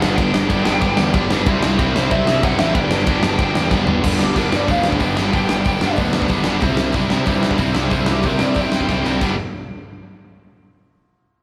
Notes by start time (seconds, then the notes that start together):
0.00 G1 G2 D3 G3 B3 D4 F#5, snare
0.16 G1 G2 D3 G3 B3 D4 G5, kick, ride
0.34 G1, snare
0.48 G1 G2 D3 G3 B3 D4, kick, ride
0.64 G1 G2 D3 G3 B3 D4, snare
0.80 G1 G2 D3 G3 B3 D4, kick, ride
0.97 E2, snare
1.14 G1 G2 D3 G3 B3 D4, kick, ride
1.29 G1 G2 D3 G3 B3 D4, snare
1.46 C2 C3 G3 C4 E4, kick, ride
1.63 C2, snare
1.78 C2 C3 G3 C4 E4, kick, ride
1.94 C2 C3 G3 C4 E4 C5, snare
2.10 C2 C3 G3 C4 E4 E5, kick, ride
2.26 C2, snare
2.42 C2 C3 G3 C4 E4 F#5, kick, ride
2.58 A1 C3 G3 C4 E4 E5, snare
2.73 G1 G2 D3 G3 B3 D4 G5, kick, ride
2.90 G1, snare
3.06 G1 G2 D3 G3 B3 D4, kick, ride
3.22 G1 G2 D3 G3 B3 D4, snare
3.38 G1 G2 D3 G3 B3 D4, kick, ride
3.54 E2, snare
3.71 G1 G2 D3 G3 B3 D4, kick, snare
3.87 G1 G2 D3 G3 B3 D4, floor tom
4.03 G1 G2 D3 G3 B3 D4, kick, crash
4.19 G1 G4, snare
4.35 G1 G2 D3 G3 B3 D4 A#4, kick, open hi-hat
4.51 G2 D3 G3 B3 D4, snare
4.56 D5
4.67 D2 G2 D3 G3 B3 D4, kick, open hi-hat
4.71 F5
4.83 snare
4.89 G5, kick
4.99 G1 G2 D3 G3 B3 D4 G5, kick, open hi-hat
5.16 G1 G2 D3 G3 B3 D4, snare
5.32 G1 G2 D3 G3 B3 D4, kick, open hi-hat
5.49 G1, snare
5.65 G1 G2 D3 G3 B3 D4, kick, open hi-hat
5.81 G2 D3 G3 B3 D4, snare
5.85 G2
5.96 D2 G2 D3 G3 B3 D4, kick, open hi-hat
6.13 snare
6.22 kick
6.28 G1 G2 D3 G3 B3 D4, kick, open hi-hat
6.44 D3 G3 B3 D4, snare
6.48 G1 G2
6.61 C2 C3 G3 C4 E4, kick, open hi-hat
6.77 C2, snare
6.92 C2 C3 G3 C4 E4, kick, open hi-hat
7.10 C3 G3 C4 E4, snare
7.26 G2 C3 G3 C4 E4, kick, open hi-hat
7.43 snare
7.51 kick
7.58 C2 C3 G3 C4 E4, kick, open hi-hat
7.74 C2 C3 G3 C4 E4, snare
7.90 C2 C3 G3 C4 E4, kick, open hi-hat
8.06 C2, snare
8.12 G4
8.23 C2 C3 G3 C4 E4, kick, open hi-hat
8.28 A#4
8.39 C3 G3 C4 E4, snare
8.43 D5
8.54 G2 C3 G3 C4 E4, kick, open hi-hat
8.61 G5
8.72 snare
8.77 G5, kick
8.88 C2 C3 G3 C4 E4, kick, snare
8.92 G5
9.04 C2 C3 G3 C4 E4, snare
9.21 G1 G2 D3 G3 B3 D4, kick, crash